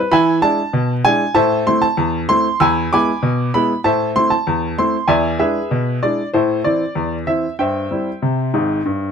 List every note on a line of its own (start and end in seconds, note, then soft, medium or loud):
0.00 0.11 B4 medium
0.12 0.38 E3 loud
0.12 0.41 E5 medium
0.12 0.41 G#5 medium
0.12 0.36 B5 loud
0.42 0.59 G#3 medium
0.42 0.60 D4 medium
0.42 0.60 E4 medium
0.42 0.92 A5 loud
0.73 1.00 B2 medium
1.05 1.22 G#3 medium
1.05 1.22 D4 medium
1.05 1.23 E4 medium
1.05 1.34 G#5 loud
1.35 1.62 A2 medium
1.35 1.65 C5 medium
1.35 1.65 E5 medium
1.35 1.65 A5 loud
1.67 1.84 A3 medium
1.67 1.85 C4 medium
1.67 1.85 E4 medium
1.67 1.82 C6 loud
1.82 2.19 A5 loud
1.97 2.24 E2 medium
2.29 2.47 A3 medium
2.29 2.47 C4 medium
2.29 2.46 E4 medium
2.29 2.59 C6 loud
2.60 2.87 E2 medium
2.60 2.90 G#5 medium
2.60 2.90 B5 medium
2.60 2.90 E6 loud
2.93 3.10 G#3 medium
2.93 3.10 B3 medium
2.93 3.10 E4 medium
2.93 3.51 G#5 medium
2.93 3.51 B5 medium
2.93 3.51 D6 loud
3.23 3.49 B2 medium
3.54 3.71 G#3 medium
3.54 3.72 B3 medium
3.54 3.72 E4 medium
3.54 3.79 B5 medium
3.84 4.11 A2 medium
3.84 4.14 C5 medium
3.84 4.14 E5 medium
3.84 4.09 A5 medium
4.16 4.33 A3 soft
4.16 4.33 C4 medium
4.16 4.34 E4 medium
4.16 4.31 C6 loud
4.30 4.75 A5 medium
4.47 4.73 E2 medium
4.78 4.95 A3 soft
4.78 4.96 C4 medium
4.78 4.96 E4 medium
4.78 5.08 C6 medium
5.08 5.35 E2 medium
5.08 5.38 D5 medium
5.08 5.38 E5 medium
5.08 5.38 G#5 medium
5.39 5.56 G#3 soft
5.39 5.57 D4 soft
5.39 5.57 E4 soft
5.39 5.98 G#4 medium
5.39 5.98 B4 medium
5.39 5.99 E5 medium
5.71 5.97 B2 medium
6.03 6.20 G#3 soft
6.03 6.21 D4 soft
6.03 6.20 E4 soft
6.03 6.27 D5 medium
6.34 6.60 A2 medium
6.34 6.63 E4 medium
6.34 6.63 A4 medium
6.34 6.58 C5 medium
6.64 6.82 E3 soft
6.64 6.83 C4 soft
6.64 6.83 E4 soft
6.64 7.15 D5 medium
6.95 7.22 E2 medium
7.27 7.44 E3 soft
7.27 7.45 C4 soft
7.27 7.45 E4 soft
7.27 7.52 E5 medium
7.59 7.86 G2 medium
7.59 9.12 C5 medium
7.59 9.12 E5 medium
7.59 9.11 G5 medium
7.91 8.08 G3 soft
7.91 8.08 C4 soft
7.91 8.09 E4 soft
8.22 8.49 C3 medium
8.54 8.79 G#1 medium
8.54 8.79 G#2 medium
8.86 9.12 G2 medium